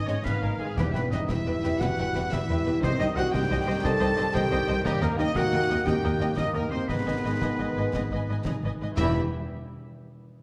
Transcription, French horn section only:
0.11 0.18 C#4 medium
0.27 0.43 B3 medium
0.44 0.61 A#3 medium
0.62 0.78 G#3 medium
0.77 0.94 G3 loud
0.94 1.11 B3 loud
1.13 1.30 D#4 loud
1.28 1.80 E4 loud
1.80 2.17 F#4 loud
2.32 2.82 E4 loud
2.83 3.00 C4 loud
3.00 3.08 D#4 loud
3.16 3.33 F#4 loud
3.33 3.84 G4 loud
3.86 4.35 A4 loud
4.34 4.84 G4 loud
4.85 5.02 G3 loud
5.02 5.19 A#3 loud
5.18 5.36 D#4 loud
5.36 5.85 F#4 loud
5.85 6.37 G4 loud
6.37 6.54 D#4 loud
6.54 6.71 A#3 loud
6.70 6.88 C4 loud
6.90 8.46 B3 loud
8.98 9.13 E4 loud

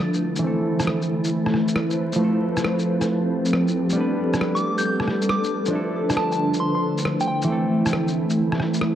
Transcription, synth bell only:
4.55 4.74 D6 medium
4.78 4.82 G6 medium
4.85 4.94 G6 medium
5.29 5.53 D6 medium
6.17 6.26 A5 medium
6.32 6.37 A5 medium
6.60 6.70 C6 medium
6.75 6.80 C6 medium
7.21 7.25 G5 medium
7.28 7.37 G5 medium

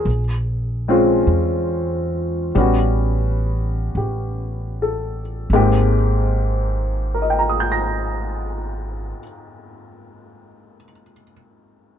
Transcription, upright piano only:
0.00 0.20 G#4 soft
0.88 2.55 G#3 soft
0.88 2.55 C4 soft
0.88 2.56 C#4 soft
0.88 2.56 F4 soft
2.55 5.49 G3 soft
2.55 5.50 B3 soft
2.55 5.50 C#4 soft
2.60 5.52 F#4 soft
3.97 5.20 G4 soft
4.82 5.93 A4 soft
5.53 9.19 G#2 medium
5.53 9.19 G#3 soft
5.53 9.19 A#3 soft
5.53 9.21 C4 soft
5.53 9.21 G4 medium
7.14 10.76 A#4 soft
7.22 10.84 D#5 soft
7.30 10.92 G5 soft
7.39 11.00 A#5 soft
7.49 11.11 D#6 soft
7.60 11.22 G6 soft
7.72 11.33 A#6 soft

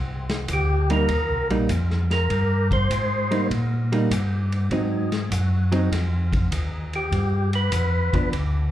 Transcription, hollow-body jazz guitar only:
0.90 1.08 G3 medium
0.90 1.08 A#3 medium
0.90 1.08 D#4 medium
1.51 1.68 G3 medium
1.51 1.68 A#3 medium
1.51 1.69 D#4 medium
3.31 3.49 G3 medium
3.31 3.49 A#3 medium
3.31 3.49 D#4 medium
3.92 4.09 G3 medium
3.92 4.10 A#3 medium
3.92 4.10 D#4 medium
4.72 5.08 F#3 medium
4.72 5.09 C4 medium
4.72 5.09 D#4 medium
5.72 5.90 F#3 medium
5.72 5.90 C4 medium
5.72 5.90 D#4 medium
8.14 8.31 F3 medium
8.14 8.32 B3 medium
8.14 8.32 D4 medium

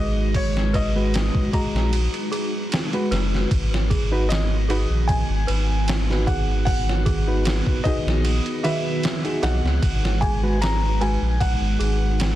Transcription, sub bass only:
0.00 1.30 G#1 loud
1.74 2.08 A#1 medium
3.11 3.46 F#1 medium
3.51 4.86 G#1 loud
4.90 5.24 A#1 medium
5.29 5.45 G#1 loud
5.48 7.62 G#1 loud
8.06 8.40 A#1 medium
9.43 9.61 B1 loud
9.64 9.80 C#2 medium
9.83 11.17 G#1 loud
11.21 11.56 A#1 medium
11.61 11.77 G#1 medium
11.80 12.35 G#1 medium

